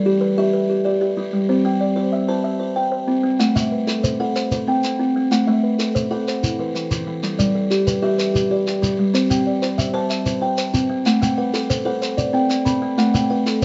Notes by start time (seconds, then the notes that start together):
Already playing: A4 D5
0.05 G4
0.21 B4
0.38 G4 E5
0.53 B4
0.70 G4
0.85 G4 D5
1.01 G4
1.17 G3
1.33 G3
1.49 C4 C5
1.65 C4 G5
1.81 D5
1.96 C5
2.12 E5
2.28 C5 A5
2.44 E5
2.60 C5
2.76 C5 G5
2.92 C5
3.08 C4
3.23 C4
3.39 A3 F#5, shekere
3.55 A3 E5, shekere
3.72 B4
3.87 A4, shekere
4.04 C5, shekere
4.20 A4 F#5
4.36 C5, shekere
4.52 C5, shekere
4.67 C4 G5
4.84 C4, shekere
4.99 C4
5.16 C4
5.31 A3 F#5, shekere
5.47 A3 E5
5.63 B4
5.79 A4, shekere
5.95 C5, shekere
6.11 A4 F#5
6.28 C5, shekere
6.43 E4, shekere
6.59 E3 B4
6.75 E3, shekere
6.91 E3, shekere
7.07 E3
7.23 G3 A4, shekere
7.39 G3 D5, shekere
7.55 A4
7.71 G4, shekere
7.87 B4, shekere
8.02 G4 E5
8.19 B4, shekere
8.34 G4, shekere
8.51 G4 D5
8.67 G4, shekere
8.82 G3, shekere
8.99 G3
9.14 C4 C5, shekere
9.30 C4 G5, shekere
9.47 D5
9.62 C5, shekere
9.78 E5, shekere
9.94 C5 A5
10.10 E5, shekere
10.26 C5, shekere
10.41 C5 G5
10.58 C5, shekere
10.74 C4, shekere
10.90 C4
11.06 A3 F#5, shekere
11.22 A3 G5, shekere
11.38 B4 F#5
11.54 A4, shekere
11.70 C5, shekere
11.85 A4 C5 F#5
12.02 C5, shekere
12.17 D5, shekere
12.33 C4 G5
12.50 C4, shekere
12.65 C4 B5, shekere
12.82 C4
12.98 A3 F#5, shekere
13.14 A3 G5, shekere
13.30 B4 F#5
13.46 A4, shekere